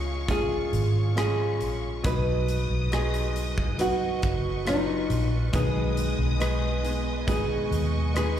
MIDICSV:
0, 0, Header, 1, 7, 480
1, 0, Start_track
1, 0, Tempo, 874636
1, 1122, Time_signature, 4, 2, 24, 8
1, 4609, End_track
2, 0, Start_track
2, 0, Title_t, "String section"
2, 0, Program_c, 0, 48
2, 0, Note_on_c, 0, 68, 66
2, 0, Note_on_c, 0, 73, 55
2, 0, Note_on_c, 0, 77, 54
2, 0, Note_on_c, 0, 85, 70
2, 1104, Note_off_c, 0, 68, 0
2, 1105, Note_off_c, 0, 73, 0
2, 1105, Note_off_c, 0, 77, 0
2, 1105, Note_off_c, 0, 85, 0
2, 1118, Note_on_c, 0, 71, 65
2, 1119, Note_on_c, 0, 87, 71
2, 1120, Note_on_c, 0, 75, 59
2, 2070, Note_off_c, 0, 87, 0
2, 2083, Note_on_c, 0, 85, 66
2, 3018, Note_off_c, 0, 75, 0
2, 3030, Note_off_c, 0, 85, 0
2, 3040, Note_on_c, 0, 80, 58
2, 3042, Note_on_c, 0, 87, 71
2, 3043, Note_on_c, 0, 75, 65
2, 3987, Note_off_c, 0, 87, 0
2, 3992, Note_on_c, 0, 85, 75
2, 4609, Note_off_c, 0, 71, 0
2, 4609, Note_off_c, 0, 75, 0
2, 4609, Note_off_c, 0, 80, 0
2, 4609, Note_off_c, 0, 85, 0
2, 4609, End_track
3, 0, Start_track
3, 0, Title_t, "Nylon-string guitar"
3, 0, Program_c, 1, 24
3, 0, Note_on_c, 1, 68, 74
3, 163, Note_off_c, 1, 68, 0
3, 169, Note_on_c, 1, 68, 85
3, 624, Note_off_c, 1, 68, 0
3, 652, Note_on_c, 1, 68, 80
3, 1106, Note_off_c, 1, 68, 0
3, 1132, Note_on_c, 1, 71, 89
3, 1586, Note_off_c, 1, 71, 0
3, 1612, Note_on_c, 1, 68, 85
3, 2064, Note_off_c, 1, 68, 0
3, 2090, Note_on_c, 1, 66, 86
3, 2568, Note_off_c, 1, 66, 0
3, 2570, Note_on_c, 1, 63, 76
3, 2902, Note_off_c, 1, 63, 0
3, 3047, Note_on_c, 1, 68, 85
3, 3996, Note_off_c, 1, 68, 0
3, 4003, Note_on_c, 1, 68, 82
3, 4481, Note_off_c, 1, 68, 0
3, 4487, Note_on_c, 1, 68, 77
3, 4609, Note_off_c, 1, 68, 0
3, 4609, End_track
4, 0, Start_track
4, 0, Title_t, "Grand piano"
4, 0, Program_c, 2, 0
4, 0, Control_c, 2, 64, 127
4, 0, Note_on_c, 2, 49, 49
4, 0, Note_on_c, 2, 53, 61
4, 0, Note_on_c, 2, 56, 58
4, 0, Note_on_c, 2, 61, 50
4, 0, Note_on_c, 2, 68, 67
4, 131, Note_off_c, 2, 53, 0
4, 132, Note_off_c, 2, 56, 0
4, 133, Note_off_c, 2, 61, 0
4, 135, Note_off_c, 2, 68, 0
4, 154, Note_on_c, 2, 53, 59
4, 157, Note_on_c, 2, 56, 57
4, 159, Note_on_c, 2, 61, 52
4, 162, Note_on_c, 2, 65, 68
4, 614, Note_off_c, 2, 53, 0
4, 615, Note_off_c, 2, 56, 0
4, 616, Note_off_c, 2, 61, 0
4, 618, Note_off_c, 2, 65, 0
4, 635, Note_on_c, 2, 53, 62
4, 637, Note_on_c, 2, 56, 53
4, 640, Note_on_c, 2, 61, 52
4, 642, Note_on_c, 2, 68, 65
4, 1095, Note_off_c, 2, 53, 0
4, 1096, Note_off_c, 2, 56, 0
4, 1098, Note_off_c, 2, 61, 0
4, 1099, Note_off_c, 2, 68, 0
4, 1116, Note_on_c, 2, 54, 74
4, 1118, Note_on_c, 2, 59, 67
4, 1120, Note_on_c, 2, 47, 50
4, 1122, Note_on_c, 2, 63, 69
4, 1124, Note_on_c, 2, 71, 85
4, 1128, Control_c, 2, 64, 0
4, 1129, Note_off_c, 2, 49, 0
4, 1222, Control_c, 2, 64, 127
4, 1576, Note_off_c, 2, 54, 0
4, 1577, Note_off_c, 2, 59, 0
4, 1579, Note_off_c, 2, 63, 0
4, 1580, Note_off_c, 2, 71, 0
4, 1601, Note_on_c, 2, 54, 62
4, 1603, Note_on_c, 2, 59, 60
4, 1607, Note_on_c, 2, 63, 60
4, 1609, Note_on_c, 2, 68, 73
4, 1819, Note_off_c, 2, 47, 0
4, 2057, Note_off_c, 2, 54, 0
4, 2058, Note_off_c, 2, 59, 0
4, 2059, Note_off_c, 2, 63, 0
4, 2061, Note_off_c, 2, 68, 0
4, 2076, Note_on_c, 2, 54, 60
4, 2078, Note_on_c, 2, 59, 56
4, 2081, Note_on_c, 2, 63, 55
4, 2084, Note_on_c, 2, 71, 69
4, 2533, Note_off_c, 2, 54, 0
4, 2534, Note_off_c, 2, 59, 0
4, 2536, Note_off_c, 2, 63, 0
4, 2537, Note_off_c, 2, 71, 0
4, 2553, Note_on_c, 2, 54, 60
4, 2555, Note_on_c, 2, 59, 59
4, 2558, Note_on_c, 2, 63, 54
4, 2562, Note_on_c, 2, 65, 74
4, 3011, Note_off_c, 2, 54, 0
4, 3012, Note_off_c, 2, 59, 0
4, 3013, Note_off_c, 2, 63, 0
4, 3015, Note_off_c, 2, 65, 0
4, 3033, Note_on_c, 2, 56, 78
4, 3036, Note_on_c, 2, 59, 70
4, 3038, Note_on_c, 2, 47, 52
4, 3039, Note_on_c, 2, 63, 69
4, 3042, Note_on_c, 2, 71, 83
4, 3045, Control_c, 2, 64, 0
4, 3149, Control_c, 2, 64, 127
4, 3489, Note_off_c, 2, 56, 0
4, 3491, Note_off_c, 2, 59, 0
4, 3492, Note_off_c, 2, 63, 0
4, 3494, Note_off_c, 2, 71, 0
4, 3510, Note_on_c, 2, 56, 70
4, 3513, Note_on_c, 2, 59, 56
4, 3515, Note_on_c, 2, 63, 61
4, 3518, Note_on_c, 2, 71, 71
4, 3733, Note_off_c, 2, 47, 0
4, 3968, Note_off_c, 2, 56, 0
4, 3970, Note_off_c, 2, 59, 0
4, 3971, Note_off_c, 2, 63, 0
4, 3972, Note_off_c, 2, 71, 0
4, 3988, Note_on_c, 2, 56, 66
4, 3991, Note_on_c, 2, 59, 61
4, 3994, Note_on_c, 2, 63, 61
4, 3997, Note_on_c, 2, 71, 77
4, 4448, Note_off_c, 2, 56, 0
4, 4449, Note_off_c, 2, 59, 0
4, 4451, Note_off_c, 2, 63, 0
4, 4452, Note_off_c, 2, 71, 0
4, 4468, Note_on_c, 2, 56, 69
4, 4472, Note_on_c, 2, 59, 55
4, 4474, Note_on_c, 2, 63, 60
4, 4478, Note_on_c, 2, 71, 68
4, 4609, Note_off_c, 2, 56, 0
4, 4609, Note_off_c, 2, 59, 0
4, 4609, Note_off_c, 2, 63, 0
4, 4609, Note_off_c, 2, 71, 0
4, 4609, End_track
5, 0, Start_track
5, 0, Title_t, "Steel-string acoustic guitar"
5, 0, Program_c, 3, 25
5, 3040, Note_on_c, 3, 47, 75
5, 3042, Note_on_c, 3, 51, 71
5, 3045, Note_on_c, 3, 56, 69
5, 3046, Note_on_c, 3, 59, 77
5, 3048, Note_on_c, 3, 63, 76
5, 3049, Note_on_c, 3, 68, 71
5, 3508, Note_off_c, 3, 56, 0
5, 3515, Note_off_c, 3, 59, 0
5, 3515, Note_on_c, 3, 56, 55
5, 3517, Note_off_c, 3, 47, 0
5, 3518, Note_off_c, 3, 51, 0
5, 3519, Note_off_c, 3, 63, 0
5, 3521, Note_off_c, 3, 68, 0
5, 3522, Note_on_c, 3, 59, 59
5, 3526, Note_on_c, 3, 63, 58
5, 3530, Note_on_c, 3, 68, 62
5, 3746, Note_off_c, 3, 68, 0
5, 3751, Note_off_c, 3, 63, 0
5, 3752, Note_on_c, 3, 68, 55
5, 3754, Note_off_c, 3, 56, 0
5, 3756, Note_off_c, 3, 59, 0
5, 3758, Note_on_c, 3, 63, 52
5, 3762, Note_on_c, 3, 59, 52
5, 3767, Note_on_c, 3, 56, 44
5, 3994, Note_off_c, 3, 56, 0
5, 3994, Note_off_c, 3, 68, 0
5, 3995, Note_on_c, 3, 47, 63
5, 3996, Note_off_c, 3, 59, 0
5, 3996, Note_off_c, 3, 63, 0
5, 3998, Note_on_c, 3, 51, 69
5, 4000, Note_on_c, 3, 56, 67
5, 4003, Note_on_c, 3, 59, 74
5, 4004, Note_on_c, 3, 63, 72
5, 4006, Note_on_c, 3, 68, 75
5, 4468, Note_off_c, 3, 56, 0
5, 4474, Note_off_c, 3, 59, 0
5, 4475, Note_off_c, 3, 47, 0
5, 4475, Note_on_c, 3, 56, 55
5, 4477, Note_off_c, 3, 51, 0
5, 4478, Note_off_c, 3, 63, 0
5, 4480, Note_on_c, 3, 59, 53
5, 4481, Note_off_c, 3, 68, 0
5, 4484, Note_on_c, 3, 63, 59
5, 4489, Note_on_c, 3, 68, 60
5, 4609, Note_off_c, 3, 56, 0
5, 4609, Note_off_c, 3, 59, 0
5, 4609, Note_off_c, 3, 63, 0
5, 4609, Note_off_c, 3, 68, 0
5, 4609, End_track
6, 0, Start_track
6, 0, Title_t, "Fingered electric bass"
6, 0, Program_c, 4, 33
6, 0, Note_on_c, 4, 37, 76
6, 377, Note_off_c, 4, 37, 0
6, 398, Note_on_c, 4, 32, 77
6, 881, Note_off_c, 4, 32, 0
6, 881, Note_on_c, 4, 34, 75
6, 1105, Note_off_c, 4, 34, 0
6, 1122, Note_on_c, 4, 35, 86
6, 1461, Note_off_c, 4, 35, 0
6, 1481, Note_on_c, 4, 35, 76
6, 2298, Note_off_c, 4, 35, 0
6, 2321, Note_on_c, 4, 30, 81
6, 2778, Note_off_c, 4, 30, 0
6, 2798, Note_on_c, 4, 34, 75
6, 3021, Note_off_c, 4, 34, 0
6, 3037, Note_on_c, 4, 35, 90
6, 3374, Note_off_c, 4, 35, 0
6, 3394, Note_on_c, 4, 35, 81
6, 4212, Note_off_c, 4, 35, 0
6, 4233, Note_on_c, 4, 39, 75
6, 4609, Note_off_c, 4, 39, 0
6, 4609, End_track
7, 0, Start_track
7, 0, Title_t, "Drums"
7, 156, Note_on_c, 9, 36, 75
7, 156, Note_on_c, 9, 42, 75
7, 211, Note_off_c, 9, 36, 0
7, 211, Note_off_c, 9, 42, 0
7, 401, Note_on_c, 9, 42, 51
7, 456, Note_off_c, 9, 42, 0
7, 642, Note_on_c, 9, 42, 68
7, 647, Note_on_c, 9, 37, 95
7, 697, Note_off_c, 9, 42, 0
7, 702, Note_off_c, 9, 37, 0
7, 881, Note_on_c, 9, 42, 52
7, 936, Note_off_c, 9, 42, 0
7, 1121, Note_on_c, 9, 42, 85
7, 1122, Note_on_c, 9, 36, 100
7, 1176, Note_off_c, 9, 42, 0
7, 1177, Note_off_c, 9, 36, 0
7, 1363, Note_on_c, 9, 42, 66
7, 1418, Note_off_c, 9, 42, 0
7, 1602, Note_on_c, 9, 42, 64
7, 1609, Note_on_c, 9, 37, 92
7, 1657, Note_off_c, 9, 42, 0
7, 1664, Note_off_c, 9, 37, 0
7, 1722, Note_on_c, 9, 42, 48
7, 1777, Note_off_c, 9, 42, 0
7, 1843, Note_on_c, 9, 42, 62
7, 1898, Note_off_c, 9, 42, 0
7, 1963, Note_on_c, 9, 36, 72
7, 2017, Note_off_c, 9, 36, 0
7, 2080, Note_on_c, 9, 42, 78
7, 2134, Note_off_c, 9, 42, 0
7, 2318, Note_on_c, 9, 42, 50
7, 2322, Note_on_c, 9, 36, 83
7, 2373, Note_off_c, 9, 42, 0
7, 2377, Note_off_c, 9, 36, 0
7, 2560, Note_on_c, 9, 42, 72
7, 2565, Note_on_c, 9, 37, 96
7, 2615, Note_off_c, 9, 42, 0
7, 2620, Note_off_c, 9, 37, 0
7, 2799, Note_on_c, 9, 42, 54
7, 2854, Note_off_c, 9, 42, 0
7, 3035, Note_on_c, 9, 42, 87
7, 3038, Note_on_c, 9, 36, 95
7, 3090, Note_off_c, 9, 42, 0
7, 3093, Note_off_c, 9, 36, 0
7, 3277, Note_on_c, 9, 42, 69
7, 3332, Note_off_c, 9, 42, 0
7, 3514, Note_on_c, 9, 42, 65
7, 3521, Note_on_c, 9, 37, 100
7, 3569, Note_off_c, 9, 42, 0
7, 3576, Note_off_c, 9, 37, 0
7, 3756, Note_on_c, 9, 42, 58
7, 3811, Note_off_c, 9, 42, 0
7, 3994, Note_on_c, 9, 36, 78
7, 3996, Note_on_c, 9, 42, 79
7, 4048, Note_off_c, 9, 36, 0
7, 4051, Note_off_c, 9, 42, 0
7, 4239, Note_on_c, 9, 42, 57
7, 4293, Note_off_c, 9, 42, 0
7, 4476, Note_on_c, 9, 42, 69
7, 4481, Note_on_c, 9, 37, 94
7, 4531, Note_off_c, 9, 42, 0
7, 4536, Note_off_c, 9, 37, 0
7, 4609, End_track
0, 0, End_of_file